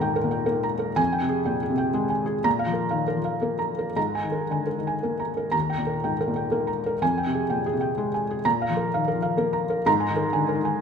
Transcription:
Already playing: D#2 A#2 A#4 A#5
0.00 G#2 G5
0.16 A#4
0.24 A#2
0.31 G5
0.46 A#3 A#4
0.63 A#5
0.79 A#4
0.96 F2 G#5
1.12 G5
1.21 C3
1.29 G#4
1.45 A#2 G5
1.63 G#4
1.70 C3
1.78 G5
1.94 G#3 G#4
2.10 G#5
2.26 G#4
2.44 A#2 A#5
2.59 F5
2.66 F3
2.73 A#4
2.91 D#3 F5
3.08 A#4
3.17 F3
3.25 F5
3.41 A#3 A#4
3.59 A#5
3.79 A#4
3.96 G#2 A#5
4.15 G#5
4.24 D#3
4.32 A#4
4.50 D3 G#5
4.67 A#4
4.79 D#3
4.87 G#5
5.03 A#3 A#4
5.20 A#5
5.37 A#4
5.52 D#2 A#5
5.70 G5
5.78 A#2
5.87 A#4
6.04 G#2 G5
6.21 A#4
6.28 A#2
6.36 G5
6.51 A#3 A#4
6.67 A#5
6.86 A#4
7.02 F2 G#5
7.18 G5
7.26 C3
7.34 G#4
7.50 A#2 G5
7.66 G#4
7.73 C3
7.81 G5
7.98 G#3 G#4
8.14 G#5
8.30 G#4
8.45 A#2 A#5
8.62 F5
8.69 F3
8.77 A#4
8.94 D#3 F5
9.08 A#4
9.15 F3
9.22 F5
9.37 A#3 A#4
9.53 A#5
9.70 A#4
9.86 G#2 A#5
10.00 G#5
10.10 D#3
10.16 A#4
10.33 D3 G#5
10.49 A#4
10.55 D#3
10.65 G#5

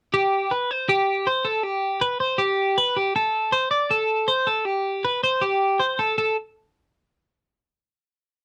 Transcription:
0.14 G4
0.51 B4
0.71 C5
0.89 G4
1.27 C5
1.45 A4
1.63 G4
2.01 B4
2.20 C5
2.38 G4
2.78 B4
2.97 G4
3.16 A4
3.52 C5
3.71 D5
3.91 A4
4.28 C5
4.47 A4
4.65 G4
5.05 B4
5.24 C5
5.42 G4
5.80 C5
5.99 A4
6.18 A4

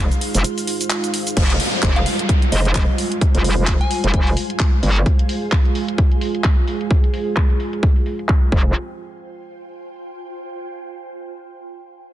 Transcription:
Already playing: G#3 D#4 F4 G#4 C5 F5
0.12 closed hi-hat, shaker
0.21 open hi-hat
0.35 F1, closed hi-hat, shaker
0.44 closed hi-hat, shaker
0.58 open hi-hat, shaker
0.67 open hi-hat
0.81 closed hi-hat, shaker
0.90 clap, closed hi-hat, shaker
1.04 closed hi-hat, shaker
1.14 open hi-hat
1.27 closed hi-hat, shaker
1.37 F1 G3 G#3 F4, kick, closed hi-hat, crash, downlifter
1.50 closed hi-hat
1.60 open hi-hat
1.82 F1, kick, clap, closed hi-hat
1.91 C5
1.96 F5 G#5, closed hi-hat
2.06 F5, open hi-hat
2.19 closed hi-hat
2.29 kick, closed hi-hat
2.42 closed hi-hat
2.52 F1 D#5, open hi-hat
2.65 closed hi-hat
2.75 kick, clap, closed hi-hat
2.98 open hi-hat
3.12 closed hi-hat
3.21 kick, closed hi-hat
3.35 F1, closed hi-hat
3.44 open hi-hat
3.58 F1
3.67 kick, clap, closed hi-hat
3.81 G#5, closed hi-hat
3.91 open hi-hat
4.04 F1, closed hi-hat
4.14 F1, kick, closed hi-hat
4.27 open hi-hat
4.37 open hi-hat
4.50 closed hi-hat
4.59 kick, clap, closed hi-hat
4.83 G1, open hi-hat
4.96 closed hi-hat
5.06 G#4, kick, closed hi-hat
5.19 closed hi-hat
5.29 open hi-hat
5.52 kick, clap, closed hi-hat
5.65 closed hi-hat
5.75 open hi-hat
5.88 closed hi-hat
5.98 kick, closed hi-hat
6.11 closed hi-hat
6.21 open hi-hat
6.35 closed hi-hat
6.44 kick, clap, closed hi-hat
6.68 open hi-hat
6.81 closed hi-hat
6.91 kick, closed hi-hat
7.04 closed hi-hat
7.14 open hi-hat
7.36 kick, clap, closed hi-hat
7.50 closed hi-hat
7.60 open hi-hat
7.73 closed hi-hat
7.83 kick, closed hi-hat
7.96 open hi-hat
8.06 open hi-hat
8.19 closed hi-hat
8.29 kick, clap, closed hi-hat
8.52 F1 F4 C5 G5 G#5, kick
8.60 C5
8.90 G5

